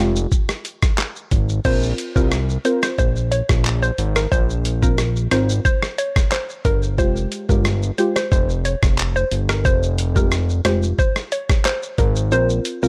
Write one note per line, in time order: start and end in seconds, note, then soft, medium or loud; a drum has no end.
0.00 0.27 F1 loud
0.00 0.17 G#3 medium
0.00 0.17 F4 medium
0.00 0.17 G4 medium
0.16 shaker medium
0.32 kick medium
0.32 shaker medium
0.49 cross-stick medium
0.49 shaker medium
0.65 closed hi-hat medium
0.65 shaker medium
0.82 kick loud
0.82 cross-stick medium
0.82 shaker medium
0.98 cross-stick medium
0.98 clap medium
0.98 shaker medium
1.16 shaker medium
1.31 1.60 G#1 medium
1.31 kick medium
1.31 closed hi-hat medium
1.31 shaker soft
1.49 shaker medium
1.65 1.94 A#1 loud
1.65 2.12 C4 loud
1.65 2.12 F4 medium
1.65 2.12 A#4 loud
1.65 1.79 C5 loud
1.65 kick loud
1.65 crash loud
1.65 shaker medium
1.83 shaker medium
1.98 closed hi-hat medium
1.98 shaker medium
2.16 2.58 C2 medium
2.16 2.32 C4 medium
2.16 2.32 F4 medium
2.16 2.28 A#4 medium
2.16 2.33 A#4 medium
2.16 kick medium
2.16 shaker medium
2.32 cross-stick medium
2.32 shaker medium
2.49 shaker medium
2.65 2.83 C4 medium
2.65 2.83 F4 medium
2.65 2.84 A#4 medium
2.65 2.79 C5 medium
2.65 closed hi-hat medium
2.65 shaker medium
2.83 2.95 C5 medium
2.83 cross-stick medium
2.83 shaker medium
2.98 3.42 A#1 medium
2.98 3.12 C5 medium
2.98 kick medium
2.98 shaker medium
3.16 shaker medium
3.32 3.45 C#5 medium
3.32 closed hi-hat medium
3.32 shaker medium
3.49 3.91 A#1 medium
3.49 kick loud
3.49 cross-stick medium
3.49 shaker medium
3.65 clap medium
3.65 shaker medium
3.83 3.95 C5 medium
3.83 shaker medium
3.98 4.27 G#1 medium
3.98 closed hi-hat medium
3.98 shaker soft
4.16 4.28 A#4 medium
4.16 cross-stick loud
4.16 shaker medium
4.32 5.28 A#1 loud
4.32 4.45 C5 loud
4.32 kick loud
4.32 shaker medium
4.50 shaker medium
4.65 closed hi-hat medium
4.65 shaker medium
4.82 4.99 C4 medium
4.82 4.99 F4 medium
4.82 4.95 A#4 medium
4.82 4.99 A#4 medium
4.82 kick loud
4.82 shaker medium
4.98 cross-stick medium
4.98 shaker medium
5.16 shaker medium
5.31 5.60 G#1 loud
5.31 5.50 C4 medium
5.31 5.50 F4 medium
5.31 5.50 A#4 medium
5.31 5.45 C5 medium
5.31 cross-stick loud
5.31 closed hi-hat medium
5.31 shaker medium
5.49 shaker medium
5.65 5.79 C5 medium
5.65 kick medium
5.65 shaker medium
5.82 cross-stick medium
5.82 shaker medium
5.98 6.12 C#5 medium
5.98 closed hi-hat medium
5.98 shaker medium
6.16 kick loud
6.16 cross-stick loud
6.16 shaker medium
6.32 6.45 C5 medium
6.32 cross-stick medium
6.32 clap medium
6.32 shaker medium
6.49 shaker medium
6.65 7.00 G1 medium
6.65 6.79 A#4 loud
6.65 kick medium
6.65 closed hi-hat medium
6.65 shaker soft
6.83 shaker medium
6.98 7.27 F1 loud
6.98 7.45 G#3 loud
6.98 7.45 F4 medium
6.98 7.45 G4 loud
6.98 7.12 C5 loud
6.98 kick loud
6.98 shaker medium
7.16 shaker medium
7.32 closed hi-hat medium
7.32 shaker medium
7.49 7.91 G1 loud
7.49 7.66 G#3 medium
7.49 7.66 F4 medium
7.49 7.66 G4 medium
7.49 7.61 A#4 medium
7.49 kick medium
7.49 shaker medium
7.65 cross-stick loud
7.65 shaker medium
7.83 shaker medium
7.98 8.17 G#3 medium
7.98 8.17 F4 medium
7.98 8.17 G4 medium
7.98 8.12 C5 medium
7.98 closed hi-hat medium
7.98 shaker medium
8.16 8.28 C5 medium
8.16 cross-stick medium
8.16 shaker medium
8.32 8.75 F1 loud
8.32 8.45 C5 medium
8.32 kick loud
8.32 shaker medium
8.49 shaker medium
8.65 8.79 C#5 medium
8.65 closed hi-hat medium
8.65 shaker medium
8.83 9.25 F1 loud
8.83 kick loud
8.83 cross-stick loud
8.83 shaker medium
8.98 clap medium
8.98 shaker medium
9.16 9.28 C5 medium
9.16 shaker medium
9.31 9.67 G1 medium
9.31 closed hi-hat medium
9.31 shaker soft
9.49 9.61 A#4 medium
9.49 cross-stick loud
9.49 shaker medium
9.65 10.61 F1 loud
9.65 9.79 C5 loud
9.65 kick loud
9.65 shaker medium
9.83 shaker medium
9.98 closed hi-hat medium
9.98 shaker medium
10.16 10.32 G#3 medium
10.16 10.32 F4 medium
10.16 10.33 G4 medium
10.16 10.28 A#4 medium
10.16 kick medium
10.16 shaker medium
10.32 cross-stick loud
10.32 shaker medium
10.49 shaker medium
10.65 10.94 F1 loud
10.65 10.83 G#3 medium
10.65 10.83 F4 medium
10.65 10.84 G4 medium
10.65 10.79 C5 medium
10.65 cross-stick loud
10.65 closed hi-hat medium
10.65 shaker medium
10.83 shaker medium
10.99 11.12 C5 medium
10.99 kick loud
10.99 shaker medium
11.16 cross-stick medium
11.16 shaker medium
11.32 11.46 C#5 medium
11.32 closed hi-hat medium
11.32 shaker medium
11.49 kick loud
11.49 cross-stick loud
11.49 shaker medium
11.65 11.79 C5 medium
11.65 cross-stick medium
11.65 clap medium
11.65 shaker medium
11.83 shaker medium
11.98 12.33 G#1 medium
11.98 12.12 A#4 medium
11.98 kick medium
11.98 closed hi-hat medium
11.98 shaker soft
12.16 shaker medium
12.31 12.60 A#1 loud
12.31 12.78 C4 medium
12.31 12.79 F4 medium
12.31 12.79 A#4 loud
12.31 12.46 C5 loud
12.31 shaker medium
12.50 shaker medium
12.65 closed hi-hat medium
12.65 shaker medium
12.83 12.88 C2 medium
12.83 12.88 C4 medium
12.83 12.88 F4 medium
12.83 12.88 A#4 medium
12.83 shaker medium